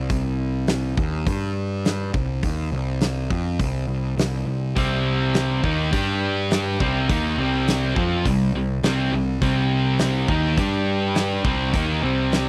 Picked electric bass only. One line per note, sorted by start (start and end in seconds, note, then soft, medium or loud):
0.10 0.94 C2 medium
0.98 1.25 D#2 medium
1.27 2.10 G2 medium
2.14 2.42 C2 medium
2.43 2.71 D#2 medium
2.72 3.27 C2 medium
3.31 3.58 F2 medium
3.60 3.87 C2 medium
3.88 4.16 C2 medium
4.17 4.45 C2 medium
4.46 4.74 C2 medium
4.76 5.60 C2 medium
5.63 5.91 D#2 medium
5.93 6.77 G2 medium
6.81 7.08 C2 medium
7.09 7.37 D#2 medium
7.38 7.93 C2 medium
7.96 8.24 F2 medium
8.25 8.53 C2 medium
8.54 8.82 C2 medium
8.84 9.11 C2 medium
9.13 9.40 C2 medium
9.41 10.25 C2 medium
10.28 10.56 D#2 medium
10.58 11.41 G2 medium
11.44 11.72 C2 medium
11.74 12.01 D#2 medium
12.03 12.49 C2 medium